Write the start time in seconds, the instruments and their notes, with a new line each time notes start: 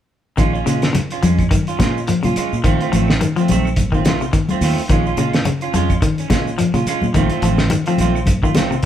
0.37 fingered electric bass A#1, clean electric guitar D#3 G#3 C#4 F4, kick, closed hi-hat, claves, shekere
0.53 clean electric guitar C#4 F4, shekere
0.66 fingered electric bass A#2, clean electric guitar C#3 G#3 C#4 F4, closed hi-hat, shekere
0.82 snare, closed hi-hat, claves, shekere
0.93 clean electric guitar C#3, closed hi-hat, high conga, shekere
1.11 clean electric guitar C#4 F4, closed hi-hat, shekere
1.23 fingered electric bass F2, clean electric guitar F3 G#3 C#4, muted clean electric guitar stroke, closed hi-hat, high conga, shekere
1.38 kick, closed hi-hat, claves, shekere
1.51 clean electric guitar D#3, kick, closed hi-hat, high conga, shekere
1.67 clean electric guitar C#4 F4, closed hi-hat, shekere
1.79 fingered electric bass A#2, clean electric guitar G#3 C#4 F4, muted clean electric guitar stroke, kick, snare, closed hi-hat, high conga, claves, shekere
1.98 shekere
2.07 clean electric guitar F3, closed hi-hat, shekere
2.23 fingered electric bass A#2, clean electric guitar C#3 C#4 F4, closed hi-hat, high conga, shekere
2.36 clean electric guitar G#3 C#4 F4, muted fingered electric bass stroke, closed hi-hat, claves, shekere
2.53 fingered electric bass A#2, shekere
2.64 fingered electric bass A#1, clean electric guitar D#3 A3 C4 F4, kick, closed hi-hat, claves, shekere
2.81 clean electric guitar A3 C4 F4, closed hi-hat, shekere
2.92 fingered electric bass A1, clean electric guitar D#3 F3 A3 C4 F4, closed hi-hat, shekere
3.08 snare, claves, shekere
3.21 clean electric guitar D#3, closed hi-hat, high conga, shekere
3.36 clean electric guitar F3 A3 C4 F4, closed hi-hat, shekere
3.48 fingered electric bass A#1, clean electric guitar D#3 A3 C4, muted clean electric guitar stroke, closed hi-hat, high conga, shekere
3.65 claves, shekere
3.76 kick, closed hi-hat, high conga, shekere
3.92 clean electric guitar D#3 C4 F4, kick, shekere
3.96 clean electric guitar A3
4.05 clean electric guitar D#3 A3 F4, snare, closed hi-hat, high conga, claves, shekere
4.21 clean electric guitar C3, shekere
4.33 clean electric guitar D#3, kick, closed hi-hat, shekere
4.49 clean electric guitar A3 C4 F4, muted fingered electric bass stroke, closed hi-hat, high conga, shekere
4.61 fingered electric bass D#2, clean electric guitar D#3 A3 C4 F4, open hi-hat, claves, shekere
4.78 shekere
4.89 fingered electric bass A#1, clean electric guitar D#3 G#3 C#4 F4, kick, closed hi-hat, claves, shekere
5.06 clean electric guitar C#4 F4, shekere
5.17 fingered electric bass A#2, clean electric guitar C#3 G#3 C#4 F4, closed hi-hat, shekere
5.33 snare, closed hi-hat, claves, shekere
5.45 clean electric guitar C#3, closed hi-hat, high conga, shekere
5.61 clean electric guitar C#4 F4, closed hi-hat, shekere
5.74 fingered electric bass F2, clean electric guitar F3 G#3 C#4 F4, closed hi-hat, high conga, shekere
5.90 kick, closed hi-hat, claves, shekere
6.02 clean electric guitar D#3, kick, closed hi-hat, shekere
6.18 clean electric guitar C#4, closed hi-hat, shekere
6.30 fingered electric bass A#2, clean electric guitar C#3 G#3 C#4 F4, kick, snare, closed hi-hat, high conga, claves, shekere
6.47 shekere
6.58 clean electric guitar F3, closed hi-hat, shekere
6.74 fingered electric bass A#2, clean electric guitar C#3 C#4 F4, closed hi-hat, high conga, shekere
6.86 clean electric guitar G#3 C#4 F4, muted fingered electric bass stroke, closed hi-hat, claves, shekere
7.02 fingered electric bass A#2, high conga, shekere
7.14 fingered electric bass A#1, clean electric guitar D#3 A3 C4 F4, kick, closed hi-hat, claves, shekere
7.30 clean electric guitar A3 C4 F4, closed hi-hat, shekere
7.42 fingered electric bass A1, clean electric guitar D#3 F3 A3 C4 F4, closed hi-hat, shekere
7.58 snare, high conga, claves, shekere
7.70 clean electric guitar D#3, closed hi-hat, high conga, shekere
7.86 clean electric guitar F3 A3 C4 F4, closed hi-hat, shekere
7.98 fingered electric bass A#1, clean electric guitar D#3 A3 C4 F4, closed hi-hat, high conga, shekere
8.15 claves, shekere
8.26 kick, closed hi-hat, high conga, shekere
8.43 clean electric guitar D#3 A3 F4, kick, shekere
8.55 clean electric guitar D#3 A3 C4 F4, snare, closed hi-hat, high conga, claves, shekere
8.71 clean electric guitar C3, shekere